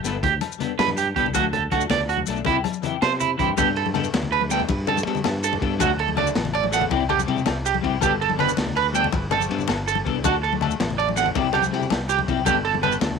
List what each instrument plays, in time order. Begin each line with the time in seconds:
0.03 fingered electric bass G1, clean electric guitar G3 B3 D4 A4, snare, closed hi-hat, maracas
0.15 low conga
0.23 fingered electric bass D2, clean electric guitar G4, kick, closed hi-hat, muted conga, low conga
0.41 closed hi-hat, high conga, low agogo
0.51 low conga, maracas
0.58 clean electric guitar G3 B3 D4 A4, closed hi-hat, low conga, maracas
0.79 fingered electric bass G2, clean electric guitar B4, snare, closed hi-hat, muted conga, low agogo, maracas
0.88 high conga, low conga, maracas
0.97 clean electric guitar G4, closed hi-hat, maracas
1.07 low conga
1.15 fingered electric bass C2, clean electric guitar B3 D4 G4 A4, muted clean electric guitar stroke, kick, closed hi-hat, low conga
1.26 low conga
1.33 fingered electric bass D2, clean electric guitar F#3 A3 F#4 A4, muted clean electric guitar stroke, kick, closed hi-hat, muted conga, high conga, low agogo, maracas
1.44 low conga
1.53 clean electric guitar A4, closed hi-hat, low conga
1.63 low conga
1.71 fingered electric bass D2, clean electric guitar F#3 A3 D4 F#4 A4, kick, closed hi-hat, low agogo, maracas
1.81 maracas
1.90 fingered electric bass D2, clean electric guitar D5, snare, closed hi-hat, muted conga, low conga, maracas
2.09 clean electric guitar F#4, closed hi-hat, low conga, low agogo, maracas
2.17 high conga, low conga
2.26 fingered electric bass B1, clean electric guitar F#3 A3 D4 A4, closed hi-hat, low conga, maracas
2.36 maracas
2.45 fingered electric bass C2, clean electric guitar C4 E4 G4, muted clean electric guitar stroke, kick, closed hi-hat, muted conga, low conga
2.55 low conga
2.64 closed hi-hat, high conga, low agogo
2.73 maracas
2.82 clean electric guitar E3 C4 E4 G4, closed hi-hat, low conga, maracas
3.02 fingered electric bass C3, clean electric guitar C5, snare, closed hi-hat, high conga, low agogo
3.20 clean electric guitar E4, closed hi-hat, low conga, maracas
3.37 fingered electric bass G2, clean electric guitar E3 C4 E4 G4, kick, closed hi-hat, low conga, maracas
3.56 fingered electric bass G2, clean electric guitar G3 B3 D4 G4 A4, kick, ride, muted conga, low conga, low agogo, maracas
3.76 clean electric guitar A4, ride
3.86 high conga, low conga
3.93 clean electric guitar G3 B3 D4 A4, ride, low conga, low agogo
4.04 maracas
4.14 fingered electric bass D2, snare, ride, muted conga
4.23 low conga
4.32 clean electric guitar B4, ride, low agogo
4.41 high conga
4.49 clean electric guitar G3 B3 D4 A4 G5, snare, ride, maracas
4.60 low conga
4.69 fingered electric bass G2, kick, ride, muted conga
4.78 low conga
4.87 clean electric guitar A4, ride, low conga, low agogo
4.97 high conga, maracas
5.05 clean electric guitar G3 B3 D4 A4, fingered electric bass G3, ride
5.15 low conga, maracas
5.24 fingered electric bass G2, snare, ride, muted conga, low agogo
5.44 clean electric guitar A4, ride, maracas
5.53 high conga, low conga
5.60 fingered electric bass G2, clean electric guitar G3 B3 D4 A4, kick, ride, low conga
5.78 fingered electric bass D2, clean electric guitar F#3 A3 D4 F#4 A4, kick, ride, muted conga, low conga, low agogo, maracas
5.99 clean electric guitar A4, ride
6.08 high conga, low conga
6.16 clean electric guitar F#3 A3 D4 A4 D5, ride, low conga, low agogo
6.27 maracas
6.35 fingered electric bass A1, snare, ride, muted conga
6.45 low conga
6.54 clean electric guitar D5, ride, low agogo
6.64 high conga
6.71 clean electric guitar F#3 A3 A4 F#5, muted clean electric guitar stroke, snare, ride, maracas
6.81 low conga
6.89 fingered electric bass C2, clean electric guitar C4 E4 G4, muted clean electric guitar stroke, kick, ride, muted conga
7.01 low conga
7.09 clean electric guitar G4, ride, low conga, low agogo
7.19 high conga, maracas
7.25 fingered electric bass C3, clean electric guitar G3 C4 E4 G4, ride
7.37 low conga, maracas
7.46 fingered electric bass C2, snare, ride, muted conga, low agogo
7.65 clean electric guitar G4, ride, maracas
7.74 high conga
7.81 fingered electric bass C2, clean electric guitar G3 C4 E4 G4, kick, ride, low conga
8.01 fingered electric bass G1, clean electric guitar G3 B3 D4 G4 A4, kick, ride, muted conga, low conga, low agogo, maracas
8.21 clean electric guitar A4, ride
8.30 high conga, low conga
8.37 clean electric guitar G3 B3 D4 B4, muted clean electric guitar stroke, ride, low conga, low agogo
8.49 maracas
8.57 fingered electric bass D2, snare, ride, muted conga
8.66 low conga
8.76 clean electric guitar B4, ride, low agogo
8.92 clean electric guitar G3 B3 D4 A4 G5, ride, maracas
9.04 low conga
9.12 fingered electric bass G1, kick, ride, muted conga
9.23 low conga
9.31 clean electric guitar A4, ride, low conga, low agogo
9.40 high conga, maracas
9.49 fingered electric bass G2, clean electric guitar G3 B3 D4 A4, ride
9.59 low conga, maracas
9.68 fingered electric bass G1, snare, ride, muted conga, low agogo
9.88 clean electric guitar A4, ride, maracas
9.95 high conga
10.04 fingered electric bass C2, clean electric guitar G3 B3 D4 A4, kick, ride, low conga
10.23 fingered electric bass D2, clean electric guitar D4 F#4 A4, muted clean electric guitar stroke, kick, ride, muted conga, low conga, low agogo, maracas
10.43 clean electric guitar A4, ride, low conga
10.53 high conga
10.61 clean electric guitar A3 D4 A4, ride, low conga, low agogo
10.71 low conga, maracas
10.80 fingered electric bass A1, snare, ride, muted conga, maracas
10.90 low conga
10.98 clean electric guitar D5, ride, low conga, low agogo
11.09 high conga
11.16 clean electric guitar F#3 A3 D4 F#5, muted clean electric guitar stroke, snare, ride, low conga, maracas
11.26 low conga
11.35 fingered electric bass C2, clean electric guitar G3 C4 E4 G4, kick, ride, muted conga, low conga
11.53 clean electric guitar G4, ride, low conga, low agogo
11.62 high conga, maracas
11.71 fingered electric bass C3, clean electric guitar G3 C4 E4 G4, ride
11.81 low conga, maracas
11.90 fingered electric bass C2, snare, ride, muted conga, low conga, low agogo, maracas
12.09 clean electric guitar G4, ride, maracas
12.19 high conga, low conga
12.27 fingered electric bass C2, clean electric guitar G3 C4 E4 G4, kick, ride, low conga, maracas
12.37 low conga
12.45 fingered electric bass G1, clean electric guitar G3 B3 D4 G4 A4, kick, ride, muted conga, low conga, low agogo, maracas
12.65 clean electric guitar A4, ride
12.75 high conga, low conga
12.82 clean electric guitar G3 B3 A4 B4, ride, low conga, low agogo
12.92 maracas
13.01 fingered electric bass D2, snare, ride, muted conga
13.11 low conga